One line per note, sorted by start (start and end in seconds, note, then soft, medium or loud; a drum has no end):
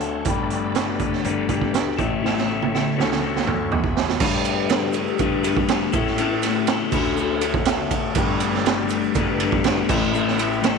0.00 0.18 D2 medium
0.00 0.27 A3 medium
0.00 0.26 C#4 medium
0.00 0.25 F#4 medium
0.00 0.29 A4 medium
0.00 0.25 C#5 medium
0.00 0.25 F#5 medium
0.00 0.22 A5 medium
0.00 0.24 C#6 medium
0.00 closed hi-hat medium
0.24 1.09 G1 medium
0.24 0.76 G3 medium
0.24 0.75 A3 medium
0.24 0.53 D4 medium
0.24 1.97 D5 medium
0.24 1.97 G5 medium
0.24 3.68 A5 medium
0.24 1.97 B5 medium
0.24 kick loud
0.24 closed hi-hat medium
0.29 0.51 G4 medium
0.29 0.49 B4 loud
0.50 0.75 D4 medium
0.50 0.77 G4 medium
0.50 0.78 B4 medium
0.50 closed hi-hat medium
0.75 1.24 A3 medium
0.75 1.01 D4 medium
0.75 0.99 G4 medium
0.75 snare loud
0.75 closed hi-hat medium
0.79 0.98 B4 medium
0.99 1.25 D4 medium
0.99 1.26 G4 soft
0.99 1.27 B4 medium
0.99 kick medium
0.99 closed hi-hat medium
1.13 snare soft
1.24 1.46 G1 loud
1.24 1.74 G3 medium
1.24 1.75 A3 medium
1.24 1.51 D4 medium
1.24 1.49 G4 medium
1.24 closed hi-hat medium
1.28 1.48 B4 medium
1.49 1.70 G1 loud
1.49 1.98 D4 medium
1.49 1.98 G4 medium
1.49 1.97 B4 medium
1.49 kick medium
1.49 closed hi-hat medium
1.61 kick medium
1.74 1.95 D2 medium
1.74 snare medium
1.74 closed hi-hat medium
1.97 2.82 A1 medium
1.97 2.21 A2 medium
1.97 2.21 E3 medium
1.97 2.22 A3 medium
1.97 2.23 C#4 medium
1.97 2.23 E4 medium
1.97 2.24 A4 medium
1.97 2.97 C#5 medium
1.97 2.97 E5 medium
1.97 3.70 C#6 medium
1.97 kick loud
1.97 closed hi-hat medium
2.22 2.72 A2 medium
2.22 2.73 E3 medium
2.22 2.49 A3 medium
2.22 2.48 C#4 medium
2.22 2.47 E4 loud
2.22 2.46 A4 medium
2.22 snare medium
2.38 snare medium
2.47 2.70 A3 soft
2.47 2.72 C#4 medium
2.47 2.73 E4 medium
2.47 2.73 A4 medium
2.62 high tom medium
2.71 2.96 A3 medium
2.71 2.96 C#4 medium
2.71 2.97 E4 medium
2.71 2.95 A4 medium
2.71 snare medium
2.96 3.40 D2 medium
2.96 3.20 D3 medium
2.96 3.20 A3 medium
2.96 3.21 C#4 medium
2.96 3.22 F#4 medium
2.96 3.23 A4 medium
2.96 3.71 C#5 medium
2.96 3.69 F#5 medium
2.96 snare medium
3.12 snare medium
3.21 3.70 D3 medium
3.21 3.70 A3 medium
3.21 3.47 C#4 medium
3.21 3.45 F#4 medium
3.21 3.43 A4 medium
3.36 snare medium
3.44 3.69 D2 loud
3.44 3.71 C#4 medium
3.44 3.70 F#4 medium
3.44 3.69 A4 medium
3.44 mid tom medium
3.70 4.14 E2 medium
3.70 4.19 E3 medium
3.70 3.97 G#3 medium
3.70 3.96 B3 medium
3.70 3.94 F#4 medium
3.70 4.21 E5 medium
3.70 4.20 F#5 medium
3.70 4.21 G#5 soft
3.70 4.21 B5 medium
3.70 floor tom medium
3.84 kick medium
3.95 4.21 G#3 soft
3.95 4.20 B3 medium
3.95 4.19 F#4 medium
3.95 snare medium
4.09 snare medium
4.20 5.04 G2 medium
4.20 4.69 G3 medium
4.20 4.70 A3 medium
4.20 4.47 D4 loud
4.20 4.45 G4 loud
4.20 4.43 B4 loud
4.20 kick loud
4.20 crash loud
4.20 shaker medium
4.44 4.71 G4 medium
4.44 4.72 B4 medium
4.44 ride medium
4.44 shaker medium
4.49 4.70 D4 medium
4.69 5.20 G3 loud
4.69 5.20 A3 loud
4.69 4.97 D4 medium
4.69 4.95 G4 medium
4.69 snare loud
4.69 ride loud
4.69 shaker medium
4.73 4.93 B4 loud
4.93 5.21 G4 medium
4.93 5.22 B4 medium
4.93 ride medium
4.93 shaker loud
4.98 5.20 D4 medium
5.07 shaker soft
5.19 5.83 G2 loud
5.19 5.45 A3 medium
5.19 5.44 D4 medium
5.19 5.43 G4 medium
5.19 kick medium
5.19 ride medium
5.19 shaker medium
5.23 5.42 B4 medium
5.43 5.94 G3 medium
5.43 5.67 A3 medium
5.43 5.67 D4 medium
5.43 5.69 G4 medium
5.43 5.70 B4 medium
5.43 ride medium
5.43 shaker loud
5.57 kick medium
5.68 5.94 A3 medium
5.68 5.92 D4 medium
5.68 5.92 G4 medium
5.68 5.92 B4 medium
5.68 snare loud
5.68 ride loud
5.68 shaker medium
5.92 6.77 A2 loud
5.92 6.16 A2 medium
5.92 6.17 E3 medium
5.92 6.19 A3 medium
5.92 6.19 C#4 medium
5.92 6.19 E4 medium
5.92 6.20 A4 medium
5.92 kick loud
5.92 ride medium
5.92 shaker loud
6.07 snare soft
6.17 6.67 A2 medium
6.17 6.67 E3 medium
6.17 6.45 A3 loud
6.17 6.44 C#4 loud
6.17 6.43 E4 loud
6.17 6.42 A4 loud
6.17 ride loud
6.17 shaker medium
6.42 6.69 A3 medium
6.42 6.69 C#4 medium
6.42 6.70 E4 medium
6.42 6.71 A4 medium
6.42 snare soft
6.42 ride medium
6.42 shaker medium
6.67 6.92 A2 medium
6.67 6.92 E3 medium
6.67 6.94 A3 medium
6.67 6.93 C#4 medium
6.67 6.93 E4 medium
6.67 snare loud
6.67 ride loud
6.67 shaker medium
6.71 6.92 A4 loud
6.92 7.76 D2 medium
6.92 7.43 D3 medium
6.92 7.16 A3 medium
6.92 7.17 C#4 medium
6.92 7.18 F#4 medium
6.92 7.19 A4 medium
6.92 kick loud
6.92 crash loud
6.92 shaker loud
7.05 shaker soft
7.16 7.43 A3 medium
7.16 7.42 C#4 medium
7.16 7.41 F#4 medium
7.16 7.40 A4 medium
7.16 shaker medium
7.41 7.66 A3 medium
7.41 7.66 C#4 medium
7.41 7.67 F#4 medium
7.41 7.69 A4 medium
7.41 ride medium
7.41 shaker medium
7.45 7.93 D3 medium
7.54 kick medium
7.65 8.16 A3 medium
7.65 7.93 C#4 medium
7.65 7.91 F#4 medium
7.65 7.90 A4 medium
7.65 snare loud
7.65 ride loud
7.65 shaker medium
7.90 8.17 C#4 medium
7.90 8.16 F#4 medium
7.90 8.18 A4 medium
7.90 kick medium
7.90 ride medium
7.90 shaker medium
8.15 9.00 G1 medium
8.15 8.63 G3 loud
8.15 8.65 A3 loud
8.15 8.42 D4 loud
8.15 8.41 G4 loud
8.15 8.39 B4 loud
8.15 kick loud
8.15 ride loud
8.15 shaker medium
8.40 8.65 D4 medium
8.40 8.65 G4 medium
8.40 8.66 B4 medium
8.40 ride medium
8.40 shaker medium
8.54 snare soft
8.64 9.15 G3 medium
8.64 9.15 A3 loud
8.64 8.93 D4 medium
8.64 8.91 G4 loud
8.64 8.89 B4 loud
8.64 snare loud
8.64 ride medium
8.64 shaker medium
8.89 9.17 G4 medium
8.89 9.18 B4 medium
8.89 ride medium
8.89 shaker loud
8.94 9.16 D4 medium
9.03 shaker soft
9.15 9.78 G1 loud
9.15 9.42 A3 medium
9.15 9.41 D4 medium
9.15 9.40 G4 medium
9.15 kick medium
9.15 ride medium
9.15 shaker medium
9.19 9.40 B4 medium
9.40 9.90 G3 medium
9.40 9.63 A3 medium
9.40 9.64 D4 medium
9.40 9.65 G4 medium
9.40 9.66 B4 loud
9.40 ride medium
9.52 kick medium
9.64 9.91 A3 medium
9.64 9.89 D4 medium
9.64 9.89 G4 medium
9.64 9.89 B4 medium
9.64 snare loud
9.64 ride loud
9.64 shaker medium
9.89 10.73 A1 loud
9.89 10.11 A2 medium
9.89 10.12 E3 medium
9.89 10.14 A3 medium
9.89 10.13 C#4 medium
9.89 10.14 E4 medium
9.89 10.15 A4 medium
9.89 kick loud
9.89 crash loud
9.89 shaker medium
10.13 10.60 A2 medium
10.13 10.61 E3 loud
10.13 10.40 A3 loud
10.13 10.38 C#4 loud
10.13 10.37 E4 loud
10.13 10.37 A4 loud
10.13 shaker medium
10.28 snare soft
10.37 10.63 A3 medium
10.37 10.62 C#4 medium
10.37 10.63 E4 medium
10.37 10.64 A4 medium
10.37 ride medium
10.37 shaker medium
10.52 shaker soft
10.61 10.78 A2 medium
10.61 10.78 E3 medium
10.61 10.78 A3 loud
10.61 10.78 C#4 medium
10.61 10.78 E4 loud
10.61 10.78 A4 loud
10.61 snare loud
10.61 ride medium
10.61 shaker medium